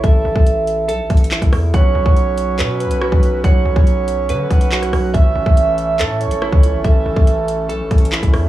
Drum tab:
HH |x-----------x-----x-----x-----x-x-x----x--o-----|x-----------x-----x-----x-----x--x--------x-----|x-----------x-----x-----x-----x--x-----x--o-----|x-----------x-----x-----x-----x--x--------x-----|
CP |------------------------------------x-----------|------------------------x-----------------------|------------------------------------x-----------|------------------------x-----------------------|
SD |------------------------------------------r-----|------------------------------------r-----------|---------------------------------------r--r-----|------------------------------------r-----------|
BD |o--------o--------------------o--------o--------|o--------o-----------------------------o--------|o--------o--------------------o-----------------|o--------o-----------------------------o--------|

HH |x-----------x-----x-----x-----x-x-x----x--o-----|
CP |------------------------------------x-----------|
SD |------------------------------------------r-----|
BD |o--------o--------------------o--------o--------|